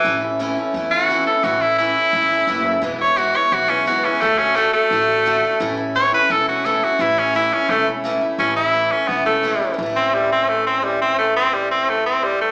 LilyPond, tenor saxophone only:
\new Staff \with { instrumentName = "Tenor saxophone" } { \time 4/4 \key a \major \tempo 4 = 172 e8 r2 fis'4 a'8 | fis'8 e'8 e'2. | r8 cis''8 fis'8 cis''8 fis'8 cis'8 fis'8 cis'8 | a8 cis'8 a8 a2~ a8~ |
a8 r8 cis''8 b'8 a'8 fis'8 a'8 fis'8 | e'8 cis'8 e'8 cis'8 a8 r4. | cis'8 e'4 cis'8 b8 a4. | r8 c'8 g8 c'8 a8 c'8 g8 c'8 |
a8 c'8 g8 c'8 a8 c'8 g8 a8 | }